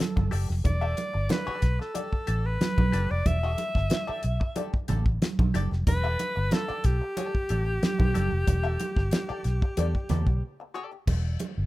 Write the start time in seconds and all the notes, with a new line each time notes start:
Already playing: A4
0.00 snare, closed hi-hat, high conga
0.16 G1, muted hollow-body jazz guitar stroke, kick, high conga
0.31 F#1 G4 A4 D5, open hi-hat
0.49 F1, muted hollow-body jazz guitar stroke, snare
0.64 E1 D5, muted hollow-body jazz guitar stroke, kick, closed hi-hat, muted conga
0.81 G4 A4 E5
0.96 muted hollow-body jazz guitar stroke, closed hi-hat, muted conga
1.14 G1, muted hollow-body jazz guitar stroke
1.29 B4, muted hollow-body jazz guitar stroke, snare, closed hi-hat, high conga
1.47 G4 A4 D5, muted fingered electric bass stroke
1.62 B1, muted hollow-body jazz guitar stroke, kick, snare, closed hi-hat
1.79 A4, muted hollow-body jazz guitar stroke, snare
1.94 G4 A4 D5, closed hi-hat, muted conga
2.12 muted hollow-body jazz guitar stroke, kick
2.27 A1 G4 A4 D5, closed hi-hat
2.45 B4, muted hollow-body jazz guitar stroke
2.61 snare, closed hi-hat, high conga
2.78 B1, muted hollow-body jazz guitar stroke, kick, high conga
2.92 F#1 G4 A4 D5, snare, closed hi-hat, high conga
3.11 F1 D5, muted hollow-body jazz guitar stroke
3.26 E1 E5, muted hollow-body jazz guitar stroke, kick, closed hi-hat, muted conga
3.43 G4 A4 E5
3.58 muted hollow-body jazz guitar stroke, closed hi-hat, muted conga
3.75 G1, muted hollow-body jazz guitar stroke, kick, snare
3.90 muted hollow-body jazz guitar stroke, snare, closed hi-hat, high conga
4.07 G4 A4 D5, muted fingered electric bass stroke
4.23 B1, muted hollow-body jazz guitar stroke, closed hi-hat
4.40 muted hollow-body jazz guitar stroke, kick
4.56 G4 A4 D5, closed hi-hat, muted conga
4.73 muted hollow-body jazz guitar stroke, kick
4.88 A1 G4 A4 D5, snare, closed hi-hat, muted conga, low conga
5.06 muted hollow-body jazz guitar stroke, kick
5.22 snare, closed hi-hat, high conga
5.39 B1, muted hollow-body jazz guitar stroke, kick, high conga
5.54 F#1 G4 A4 D5, closed hi-hat, high conga
5.71 F1, muted hollow-body jazz guitar stroke, snare
5.87 E1 B4, muted hollow-body jazz guitar stroke, kick, closed hi-hat, muted conga
6.04 G4 A4 E5
6.19 muted hollow-body jazz guitar stroke, closed hi-hat, muted conga
6.36 G1, muted hollow-body jazz guitar stroke
6.51 A4, muted hollow-body jazz guitar stroke, snare, closed hi-hat, high conga
6.68 G4 A4 D5, muted fingered electric bass stroke
6.84 B1 G4, muted hollow-body jazz guitar stroke, kick, snare, closed hi-hat
7.01 muted hollow-body jazz guitar stroke
7.17 G4 A4 D5, closed hi-hat, muted conga
7.34 muted hollow-body jazz guitar stroke, kick
7.49 A1 G4 A4 D5, closed hi-hat, muted conga
7.66 muted hollow-body jazz guitar stroke
7.83 snare, closed hi-hat, high conga
7.99 B1, muted hollow-body jazz guitar stroke, kick, high conga
8.14 F#1 G4 A4 D5, snare, closed hi-hat, high conga
8.31 F1, muted hollow-body jazz guitar stroke
8.47 E1, muted hollow-body jazz guitar stroke, kick, closed hi-hat, muted conga
8.64 G4 A4 E5
8.80 muted hollow-body jazz guitar stroke, closed hi-hat, muted conga
8.96 G1, muted hollow-body jazz guitar stroke, kick, snare
9.11 muted hollow-body jazz guitar stroke, snare, closed hi-hat, high conga
9.29 G4 A4 D5, muted fingered electric bass stroke
9.44 B1, muted hollow-body jazz guitar stroke, snare, closed hi-hat
9.62 muted hollow-body jazz guitar stroke, kick
9.77 E2 G4 A4 D5, closed hi-hat, muted conga
9.95 muted hollow-body jazz guitar stroke, kick
10.09 E2 G4 A4 D5, snare, closed hi-hat, low conga
10.27 B1, muted hollow-body jazz guitar stroke, kick
10.60 muted hollow-body jazz guitar stroke
10.74 G4 A4 D5
10.91 muted hollow-body jazz guitar stroke
11.07 E1, kick, crash, muted conga
11.39 closed hi-hat, muted conga
11.58 G1